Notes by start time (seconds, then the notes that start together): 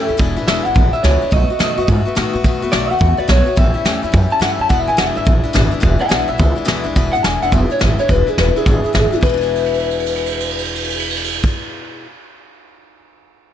Already playing: A4
0.08 D2 G3 C#4 E4
0.17 E1 E2 B2 E3 G#3 D4 E4, kick, open hi-hat
0.36 A1 E3 G#3 D4 E4
0.47 E1 E2 B2 E3 G#3 D4 E4 E5, snare
0.65 G#1 E3 G#3 D4 E4 F#5
0.74 A1 E3 G#3 D4 E4, kick, open hi-hat
0.93 E3 G#3 D4 E4 E5, muted upright bass stroke
1.03 C#2 E2 B2 E3 G#3 D4 E4 C#5, snare, open hi-hat
1.22 E3 G#3 D4 E4, muted upright bass stroke
1.31 B1 B2 D#3 A3 B3 F#4 D#5, kick, open hi-hat
1.50 A3 B3 F#4, muted upright bass stroke
1.59 F#2 B2 D#3 A3 B3 F#4, snare
1.77 F#2 A3 B3 F#4
1.87 G#2 D#3 A3 B3 F#4, kick, open hi-hat
2.05 A3 B3 F#4, muted upright bass stroke
2.15 A2 B2 D#3 A3 B3 F#4, snare, open hi-hat
2.33 G#2 A3 B3 F#4
2.44 B1 B2 D#3 A3 B3 F#4, kick, open hi-hat
2.62 E2 A3 B3 F#4
2.72 B1 B2 D#3 A3 B3 F#4 D5, snare
2.90 D#2 A3 B3 F#4 F#5
2.99 E2 D#3 A3 B3 F#4, kick, open hi-hat
3.17 A3 B3 F#4 D5, muted upright bass stroke
3.28 B1 B2 D#3 A3 B3 F#4 C#5, snare
3.46 A3 B3 F#4
3.56 A1 A2 E3 G3 C#4 E4 E5, kick, open hi-hat
3.74 G3 C#4 E4, muted upright bass stroke
3.84 E2 A2 E3 G3 C#4 E4, snare
4.03 E2 G3 C#4 E4
4.12 F#2 E3 G3 C#4 E4, kick, open hi-hat
4.30 G3 C#4 E4 A5
4.40 G2 A2 E3 G3 C#4 E4 F#5, snare, open hi-hat
4.52 E5
4.57 F#2 G3 C#4 E4
4.61 A5
4.69 E1 E2 B2 E3 G#3 D4 E4 F#5, kick, open hi-hat
4.79 E5
4.87 A1 E3 G#3 D4 E4 G#5
4.97 E1 E2 B2 E3 G#3 D4 E4 F#5, snare, open hi-hat
5.07 E5
5.15 G#1 E3 G#3 D4 E4 E5
5.25 A1 E3 G#3 D4 E4, kick
5.43 E3 G#3 D4 E4, muted upright bass stroke
5.53 G#1 E2 B2 E3 G#3 D4 E4, snare
5.71 E3 G#3 D4 E4, muted upright bass stroke
5.80 E1 E2 B2 E3 G#3 D4 E4, kick, open hi-hat
5.99 E3 G#3 D4 E4 E5 G#5, muted upright bass stroke
6.09 B1 E2 B2 E3 G#3 D4 E4 D5 F#5, snare
6.28 B1 E3 G#3 D4 E4 E5
6.38 C#2 E3 G#3 D4 E4, kick, open hi-hat
6.56 E3 G#3 D4 E4, muted upright bass stroke
6.65 D2 E2 B2 E3 G#3 D4 E4, snare, open hi-hat
6.83 C#2 E3 G#3 D4 E4
6.96 E1 E2 B2 E3 G#3 D4 E4, kick, closed hi-hat
7.13 G#1 E3 G#3 D4 E4 F#5, closed hi-hat
7.23 E1 E3 G#3 D4 E4 G#5, snare, closed hi-hat
7.42 E1 E3 G#3 D4 E4 F#5, closed hi-hat
7.52 E1 E2 B2 E3 G#3 D4 E4 E5, kick, closed hi-hat
7.70 E3 G#3 D4 E4 C#5, closed hi-hat
7.79 G#1 E3 G#3 D4 E4 E5, snare, closed hi-hat
7.99 E3 G#3 D4 E4 C#5, muted upright bass stroke, closed hi-hat
8.08 E1 E2 B2 E3 G#3 D4 E4 B4, kick, closed hi-hat
8.27 E3 G#3 D4 E4 G#4, muted upright bass stroke, closed hi-hat
8.37 E1 E3 G#3 D4 E4 B4, snare, closed hi-hat
8.56 E3 G#3 D4 E4 G#4, muted upright bass stroke, closed hi-hat
8.66 G#1 E2 B2 E3 G#3 D4 E4, kick, closed hi-hat
8.84 E3 G#3 D4 E4, muted upright bass stroke, closed hi-hat
8.93 G#1 E3 G#3 D4 E4, snare, closed hi-hat
9.11 E3 G#3 D4 E4, muted upright bass stroke, closed hi-hat
9.16 E2
9.21 E1 B2 B4, kick, crash
9.25 E3 G#3
9.34 D4 E4
9.41 crash
9.47 ride
9.55 crash
9.66 ride
9.73 crash
9.79 ride
9.91 crash
10.00 ride
10.06 crash
10.15 ride
10.26 crash
10.32 ride
10.40 crash
10.50 ride
10.58 crash
10.65 ride
10.75 crash
10.84 ride
10.90 crash
10.99 ride
11.10 crash
11.16 ride
11.24 crash
11.44 kick, crash